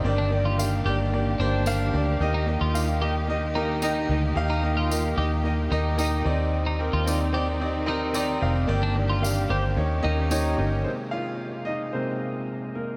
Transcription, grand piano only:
<<
  \new Staff \with { instrumentName = "Grand piano" } { \time 4/4 \key ees \major \tempo 4 = 111 << { r1 | r1 | r2. g''8 ees''8 | r1 |
r2 r8 ees''4 <des' des''>8 | \key aes \major <c' c''>8 <f' f''>4 <ees' ees''>8 <c' c''>4 r8 <bes bes'>8 | } \\ { <bes d' g' d''>8 <bes d' g' d''>8 <bes d' g' f''>8 <bes d' g' d''>8 <bes d' g' d''>8 <bes d' g' c''>8 <bes d' g' f''>8 <bes d' g' d''>8 | <bes ees' g' ees''>8 <bes ees' g' ees''>8 <bes ees' g' f''>8 <bes ees' g' ees''>8 <bes ees' g' ees''>8 <bes ees' g' bes'>8 <bes ees' g' ees''>8 <bes ees' g' ees''>8 | <bes ees' g' f''>8 <bes ees' g' ees''>8 <bes ees' g' bes'>8 <bes ees' g' ees''>8 <bes ees' g' ees''>8 <bes ees' g' ees''>8 <bes ees' g' ees''>8 <c' ees' g' d''>8~ | <c' ees' g' d''>8 <c' ees' g' bes'>8 <c' ees' g' d''>8 <c' ees' g' d''>8 <c' ees' g' d''>8 <c' ees' g' bes'>8 <c' ees' g' d''>8 <c' ees' g' f''>8 |
<bes d' g' d''>8 <bes d' g' d''>8 <bes d' g' f''>8 <bes d' g' c''>8 <bes ees' g' des''>8 <bes ees' g'>8 <bes ees' g' des''>8 <bes ees' g'>8 | r1 | } >> }
  \new Staff \with { instrumentName = "Grand piano" } { \clef bass \time 4/4 \key ees \major g,4. r2 r8 | ees4. r2 r8 | ees4. r2 ees8~ | ees4 r2. |
g,4. r8 ees4. r8 | \key aes \major <c aes bes>8 r4. <c aes bes>8 r4. | }
>>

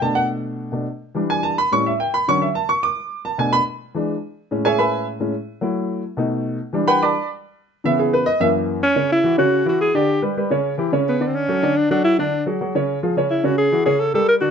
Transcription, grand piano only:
<<
  \new Staff \with { instrumentName = "Grand piano" } { \time 4/4 \key b \minor \tempo 4 = 215 a''8 fis''8 r2. | r8 gis''8 a''8 b''8 cis'''8 e''8 g''8 b''8 | cis'''8 e''8 a''8 cis'''8 d'''4. a''8 | gis''8 b''8 r2. |
r8 <gis' cis'' e'' gis''>8 <b' e'' gis'' b''>4 r2 | r1 | r8 <b' fis'' g'' b''>8 <d'' a'' b'' d'''>4 r2 | e''8 gis'8 b'8 dis''8 e''8 r4. |
\key fis \minor <cis cis' cis''>4 <e e' fis'>8 <cis cis' cis''>4 <e e' fis'>4 <d d' d''>8~ | <d d' d''>8 <g g' b'>8 <g g' b'>8 <cis cis' cis''>4 <e e' g'>8 <cis cis' cis''>4 | <d d' d''>4 <fis fis' a'>8 <d d' d''>4 <fis fis' a'>4 <d d' d''>8~ | <d d' d''>8 <fis fis' gis'>8 <fis fis' gis'>8 <cis cis' cis''>4 <eis eis' gis'>8 <cis cis' cis''>4 |
<cis cis' cis''>4 <e e' fis'>8 <cis cis' cis''>4 <g g' bes'>4 <d d' d''>8 | }
  \new Staff \with { instrumentName = "Grand piano" } { \clef bass \time 4/4 \key b \minor <b, a d'>2~ <b, a d'>8 <b, a d'>8 r4 | <e g d'>4. r8 <a, g cis'>8 r4. | <d fis cis'>8 r2. r8 | <b, a d'>8 r4. <e gis d'>8 r4. |
<a, gis cis'>2~ <a, gis cis'>8 <a, gis cis'>8 r4 | <fis a e'>4. r8 <b, a dis'>4. r8 | <e g d'>4. r2 r8 | <cis e b>4. r8 <fis, e ais>4. r8 |
\key fis \minor r1 | r1 | r1 | r1 |
r1 | }
>>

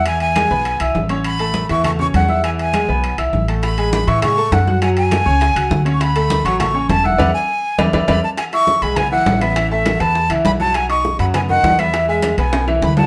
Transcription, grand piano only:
\new Staff \with { instrumentName = "Grand piano" } { \time 4/4 \key e \mixolydian \tempo 4 = 202 <e e' e''>4 <gis gis' gis''>8 <b b' b''>4 <e' e'' e'''>4 <cis' cis'' cis'''>8~ | <cis' cis'' cis'''>8 <a a' a''>4 <e e' e''>8 <a a' a''>8 <cis' cis'' cis'''>4 <e' e'' e'''>8 | <e e' e''>4 <gis gis' gis''>8 <b b' b''>4 <e' e'' e'''>4 <a a' a''>8~ | <a a' a''>8 <gis gis' gis''>4 <e e' e''>8 <gis gis' gis''>8 <a a' a''>4 <fis' fis'' fis'''>8 |
<fis fis' fis''>4 <a a' a''>8 <cis' cis'' cis'''>4 <fis' fis'' fis'''>4 <cis' cis'' cis'''>8~ | <cis' cis'' cis'''>8 <a a' a''>4 <fis fis' fis''>8 <a a' a''>8 <cis' cis'' cis'''>4 <e' e'' e'''>8 | <b' d'' e''>8 r4. <b' d'' e''>8 <b' d'' e''>8 <b' d'' e''>8 r8 | r8 <e' e'' e'''>4 <gis gis' gis''>8 <b b' b''>8 <e e' e''>4 <b b' b''>8 |
<e e' e''>8 <a a' a''>4 <b b' b''>4 <e e' e''>4 <fis fis' fis''>8~ | <fis fis' fis''>8 <dis' dis'' dis'''>4 <fis fis' fis''>8 <b b' b''>8 <dis dis' dis''>4 <b b' b''>8 | <e e' e''>8 <gis gis' gis''>4 <b b' b''>4 <e e' e''>4 <fis fis' fis''>8 | }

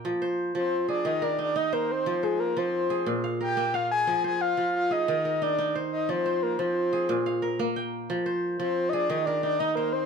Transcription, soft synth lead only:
\new Staff \with { instrumentName = "Soft synth lead" } { \time 12/8 \key f \dorian \tempo 4. = 119 r4. c''4 d''8 ees''8 d''8 d''8 ees''8 bes'8 c''8~ | c''8 aes'8 bes'8 c''2 r8 g''4 f''8 aes''8~ | aes''8 aes''8 f''4 f''8 ees''4. d''4 r8 ees''8 | c''4 bes'8 c''2. r4. |
r4. c''8.~ c''32 ees''32 d''8 ees''8 d''8 d''8 ees''8 bes'8 c''8 | }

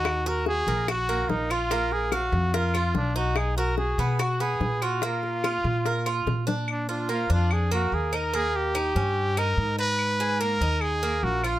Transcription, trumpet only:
\new Staff \with { instrumentName = "Trumpet" } { \time 4/4 \key bes \phrygian \tempo 4 = 145 ges'8 bes'8 aes'4 ges'4 ees'8 f'8~ | f'8 aes'8 ges'4 f'4 d'8 ges'8 | aes'8 bes'8 aes'4 fis'8 aes'4 fis'8 | f'2. r4 |
d'8 d'8 f'8 f'8 aes'8 ges'8 aes'8 bes'8 | aes'8 g'2 bes'4 ces''8~ | ces''4 bes'4 aes'4 ges'8 f'8 | }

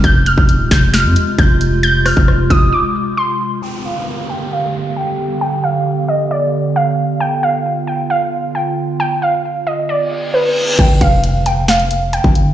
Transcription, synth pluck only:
\new Staff \with { instrumentName = "Synth pluck" } { \time 4/4 \key g \phrygian \tempo 4 = 134 g'''8 f'''4 g'''8 f'''4 g'''4 | g'''8 f'''4 ees'''8 d'''4 c'''8 r8 | g''8 f''4 g''8 f''4 g''4 | g''8 f''4 ees''8 d''4 f''4 |
g''8 f''4 g''8 f''4 g''4 | g''8 f''4 ees''8 d''4 b'8 r8 | g''8 f''4 g''8 f''4 g''4 | }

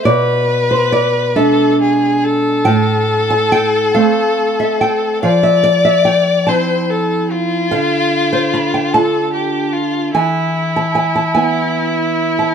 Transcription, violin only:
\new Staff \with { instrumentName = "Violin" } { \time 6/8 \key e \phrygian \tempo 4. = 48 b'4. a'8 gis'8 a'8~ | a'2. | d''4. c''8 a'8 f'8~ | f'4. a'8 g'8 f'8 |
e'2. | }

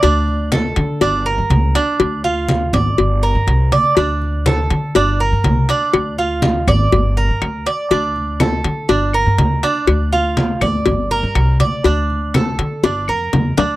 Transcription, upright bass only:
\new Staff \with { instrumentName = "Upright bass" } { \clef bass \time 4/4 \key d \minor \tempo 4 = 122 d,4. d8 g,,8. g,16 cis,8 r8 | d,4. gis,,8 g,,8. g,16 c,8 r8 | d,4. d8 g,,8. g,16 c,8 r8 | d,4. gis,,8 g,,8. g,16 d,8 r8 |
d,4. d8 g,,8. g,16 d,8 r8 | d,4. d,8 g,,8. g,16 c,8 r8 | d,4. d8 g,,8 f,8 e,8 d,8 | }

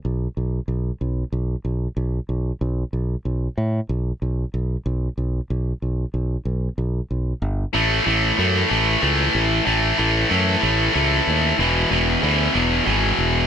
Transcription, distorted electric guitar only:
\new Staff \with { instrumentName = "Distorted electric guitar" } { \clef bass \time 6/8 \key e \mixolydian \tempo 4. = 62 r2. | r2. | r2. | r2. |
<a, e a>8 <a, e a>8 <a, e a>8 <a, e a>8 <a, e a>4 | <a, e a>8 <a, e a>8 <a, e a>8 <a, e a>8 <a, e a>4 | <e, b, e>8 <e, b, e>8 <e, b, e>8 <e, b, e>8 <e, b, e>4 | }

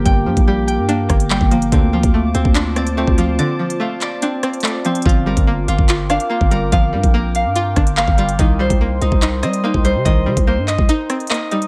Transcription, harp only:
\new Staff \with { instrumentName = "Harp" } { \time 4/4 \key g \minor \tempo 4 = 144 <bes g' g''>4 g'8 g''8 bes4 g''8 bes8 | c'8 f'4 c'4 d''8 c'8 f'8 | d''4 f'8 d''8 c'4 d''8 c'8 | f'8 bes'4 f'4 f''8 f'8 bes'8 |
f''4 bes'8 f''8 f'4 f''8 f'8 | ees'8 c''4 ees'4 ees''8 ees'8 c''8 | ees''4 c''8 ees''8 ees'4 ees''8 ees'8 | }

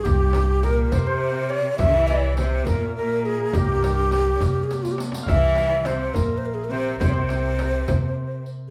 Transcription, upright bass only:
\new Staff \with { instrumentName = "Upright bass" } { \clef bass \time 6/8 \tempo 4. = 69 c,4. c4. | c,4. bes,,4. | c,4. c4. | c,4. bes,,4. |
c,4. c4. | }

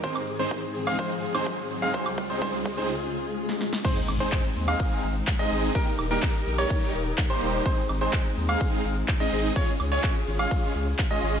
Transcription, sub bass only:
\new Staff \with { instrumentName = "Sub bass" } { \clef bass \time 4/4 \key aes \major \tempo 4 = 126 r1 | r1 | r8 aes,,8 r8 ees,8 r8 aes,,8 r8 aes,,8 | r8 ees,,8 r8 bes,,8 r8 ees,,8 r8 ees,,8 |
r8 aes,,8 r8 ees,8 r8 aes,,8 r8 aes,,8 | r8 des,8 r8 aes,,8 r8 des,8 r8 aes,,8 | }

